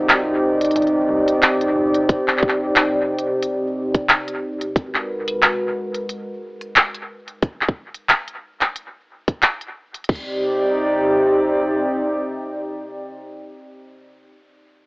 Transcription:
Already playing: C2 C3 C4 D#4 G4 D5
0.09 clap, closed hi-hat
0.61 closed hi-hat
0.65 closed hi-hat
0.71 closed hi-hat
0.76 G1, closed hi-hat
0.82 closed hi-hat
0.87 closed hi-hat
1.09 C2
1.28 closed hi-hat
1.43 clap, closed hi-hat
1.61 closed hi-hat
1.76 G1
1.95 closed hi-hat
2.09 kick, closed hi-hat
2.28 clap
2.38 clap
2.43 kick
2.49 clap
2.76 clap, closed hi-hat
3.18 closed hi-hat
3.43 closed hi-hat
3.94 kick, closed hi-hat
4.09 clap, closed hi-hat
4.28 closed hi-hat
4.61 closed hi-hat
4.76 G#3 F#4 A#4 B4, kick, closed hi-hat
4.94 clap
5.28 closed hi-hat
5.42 clap, closed hi-hat
5.95 closed hi-hat
6.09 closed hi-hat
6.61 closed hi-hat
6.76 clap, closed hi-hat
6.94 closed hi-hat
7.28 closed hi-hat
7.42 kick, closed hi-hat
7.61 clap
7.69 kick
7.94 closed hi-hat
8.09 clap, closed hi-hat
8.28 closed hi-hat
8.61 clap, closed hi-hat
8.76 closed hi-hat
9.28 kick, closed hi-hat
9.42 clap, closed hi-hat
9.61 closed hi-hat
9.94 closed hi-hat
10.04 closed hi-hat
10.09 C3 C4 D#4 G4 D5, kick, crash
10.15 closed hi-hat

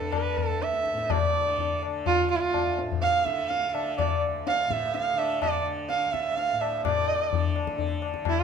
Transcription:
Already playing: D2 A2 A4
0.00 D3, tabla ge
0.12 B4, tabla na, tabla ge
0.37 A4, tabla ge
0.48 D2
0.62 E5, tabla te
0.74 tabla te
0.86 tabla ke
0.92 A2
0.98 tabla te
1.10 D5, tabla na, tabla ge
1.40 D3
1.58 tabla tin, tabla ge
1.83 D3, tabla na
2.06 F4, tabla tin, tabla ge
2.30 D2 F4
2.36 E4
2.41 F4
2.54 tabla na, tabla ge
2.79 A2, tabla te
2.92 tabla ge
3.02 F5, tabla te
3.25 D3 E5, tabla ke
3.49 F5, tabla te
3.69 E5 F5
3.74 D3, tabla na
3.98 D5, tabla na, tabla ge
4.19 D2
4.47 F5, tabla te
4.67 A2, tabla ke
4.72 E5
4.94 F5, tabla te
5.13 D3
5.18 E5, tabla na
5.42 D5, tabla na, tabla ge
5.60 D3
5.90 F5, tabla te
6.06 D2
6.13 E5, tabla ke
6.37 F5, tabla te
6.52 A2
6.60 E5, tabla na
6.83 A2 D5, tabla na, tabla ge
7.30 D3, tabla tin, tabla ge
7.56 tabla na
7.67 tabla ke
7.75 D3, tabla tin, tabla ge
8.02 tabla na
8.14 tabla ke
8.21 D2, tabla na, tabla ge
8.29 E4
8.40 F4

